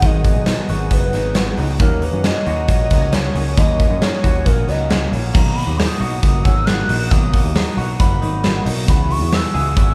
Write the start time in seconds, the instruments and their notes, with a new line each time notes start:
Already playing: clean electric guitar B3 D#4 F#4, analog synth pad F#4 F#5 G#5 D#6
0.02 picked electric bass G#1, steel-string acoustic guitar G#2 D#3 F#3 B3 D#4 G#4, clean electric guitar D#3, soft synth lead D#5, kick, closed hi-hat
0.24 clean electric guitar B3, kick, closed hi-hat
0.36 picked electric bass B1
0.46 steel-string acoustic guitar F#3 B3 D#4 G#4, clean electric guitar D#4, snare, closed hi-hat
0.68 picked electric bass G#1, steel-string acoustic guitar F#3 B3 D#4 G#4, clean electric guitar F#4, closed hi-hat
0.91 picked electric bass F#1, clean electric guitar B3, soft synth lead B4, kick, closed hi-hat
1.12 picked electric bass G#1, steel-string acoustic guitar F#3 B3 D#4 G#4, clean electric guitar D#4, snare, closed hi-hat
1.34 steel-string acoustic guitar F#3 B3 D#4 G#4, clean electric guitar B3, snare, closed hi-hat
1.57 picked electric bass C#2, steel-string acoustic guitar F#3 B3 D#4 G#4, clean electric guitar D#4, open hi-hat
1.78 picked electric bass D#2, steel-string acoustic guitar D#3 F#3 C#4 D#4 A#4, clean electric guitar A#3, soft synth lead A#4, analog synth pad C#5 A#5 D#6, kick, closed hi-hat
2.02 clean electric guitar A#3, soft synth lead B4, closed hi-hat
2.13 picked electric bass F#2
2.23 steel-string acoustic guitar F#3 C#4 D#4 A#4, clean electric guitar C#4, soft synth lead D#5, snare, closed hi-hat
2.46 picked electric bass D#2, steel-string acoustic guitar F#3 C#4 D#4 A#4, clean electric guitar F#4, closed hi-hat
2.68 picked electric bass A#1, clean electric guitar A#3, soft synth lead D#5, kick, closed hi-hat
2.90 picked electric bass C#2, steel-string acoustic guitar F#3 C#4 D#4 A#4, clean electric guitar B3, kick, snare, closed hi-hat
3.02 clean electric guitar C#4
3.12 steel-string acoustic guitar F#3 C#4 D#4 A#4, clean electric guitar A#3, soft synth lead C#5, snare, closed hi-hat
3.35 picked electric bass C#2, steel-string acoustic guitar F#3 C#4 D#4 A#4, clean electric guitar C#4, open hi-hat
3.56 picked electric bass D#2, steel-string acoustic guitar D#3 F#3 C#4 D#4 A#4, clean electric guitar A#3, soft synth lead D#5, analog synth pad G#5, kick, closed hi-hat
3.79 clean electric guitar A#3, kick, closed hi-hat
3.90 picked electric bass F#2
4.01 steel-string acoustic guitar F#3 C#4 D#4 A#4, clean electric guitar C#4, soft synth lead C#5, snare, closed hi-hat
4.23 picked electric bass D#2, steel-string acoustic guitar F#3 C#4 D#4 A#4, clean electric guitar F#4, kick, closed hi-hat
4.45 picked electric bass A#1, clean electric guitar A#3, soft synth lead A#4, kick, closed hi-hat
4.68 picked electric bass C#2, steel-string acoustic guitar F#3 C#4 D#4 A#4, clean electric guitar B3, soft synth lead D#5, snare, closed hi-hat
4.79 clean electric guitar C#4
4.90 steel-string acoustic guitar F#3 C#4 D#4, clean electric guitar A#3, snare, closed hi-hat
4.94 steel-string acoustic guitar A#4
5.11 picked electric bass A#1, steel-string acoustic guitar F#3 C#4 D#4 A#4, clean electric guitar C#4, open hi-hat
5.33 picked electric bass B1, steel-string acoustic guitar B2 D#3 F#3 B3 D#4 A#4, clean electric guitar A#3, analog synth pad F#4 F#5 D#6, soft synth lead A#5, kick, crash
5.55 clean electric guitar A#3, soft synth lead B5, hi-hat pedal, open hi-hat
5.67 picked electric bass D#2
5.77 steel-string acoustic guitar F#3 B3, clean electric guitar D#4, soft synth lead D#6, snare, hi-hat pedal, open hi-hat
5.81 steel-string acoustic guitar D#4 A#4
6.00 picked electric bass B1, steel-string acoustic guitar F#3 B3 D#4 A#4, clean electric guitar F#4, hi-hat pedal, open hi-hat
6.21 picked electric bass F#1, clean electric guitar A#3, soft synth lead D#6, kick, hi-hat pedal, open hi-hat
6.43 picked electric bass G#1, steel-string acoustic guitar F#3 B3, clean electric guitar C#4, soft synth lead E6, kick, hi-hat pedal, open hi-hat
6.47 steel-string acoustic guitar D#4 A#4
6.56 clean electric guitar D#4
6.65 steel-string acoustic guitar F#3 B3 D#4, clean electric guitar A#3, soft synth lead F#6, snare, hi-hat pedal, open hi-hat
6.70 steel-string acoustic guitar A#4
6.89 picked electric bass A#1, steel-string acoustic guitar F#3 B3 D#4, clean electric guitar D#4, hi-hat pedal, open hi-hat
6.94 steel-string acoustic guitar A#4
7.11 picked electric bass B1, steel-string acoustic guitar B2 D#3 F#3 B3 D#4 A#4, clean electric guitar A#3, soft synth lead D#6, kick, hi-hat pedal, open hi-hat
7.33 clean electric guitar A#3, kick, hi-hat pedal, open hi-hat
7.45 picked electric bass D#2
7.55 steel-string acoustic guitar F#3 B3 D#4 A#4, clean electric guitar D#4, snare, hi-hat pedal, open hi-hat
7.77 picked electric bass B1, steel-string acoustic guitar F#3 B3 D#4 A#4, clean electric guitar F#4, hi-hat pedal, open hi-hat
7.99 picked electric bass F#1, clean electric guitar A#3, soft synth lead B5, kick, hi-hat pedal, open hi-hat
8.21 picked electric bass G#1, steel-string acoustic guitar F#3 B3 D#4 A#4, clean electric guitar D#4, hi-hat pedal, open hi-hat
8.43 steel-string acoustic guitar F#3 B3 D#4 A#4, clean electric guitar A#3, snare, hi-hat pedal, open hi-hat
8.66 picked electric bass B1, steel-string acoustic guitar F#3 B3 D#4 A#4, clean electric guitar D#4, hi-hat pedal, open hi-hat
8.88 picked electric bass C#2, steel-string acoustic guitar C#3 G#3 B3 E4 B4, clean electric guitar E3, analog synth pad E5 G#5 C#6, soft synth lead B5, kick, hi-hat pedal, open hi-hat
9.10 clean electric guitar B3, soft synth lead C#6, hi-hat pedal, open hi-hat
9.22 picked electric bass E2
9.32 steel-string acoustic guitar G#3 B3 E4 B4, clean electric guitar B3, soft synth lead E6, snare, hi-hat pedal, open hi-hat
9.44 clean electric guitar C#4
9.54 picked electric bass C#2, steel-string acoustic guitar G#3 B3 E4 B4, clean electric guitar G#4, hi-hat pedal, open hi-hat
9.77 picked electric bass G#1, clean electric guitar B3, soft synth lead E6, kick, hi-hat pedal, open hi-hat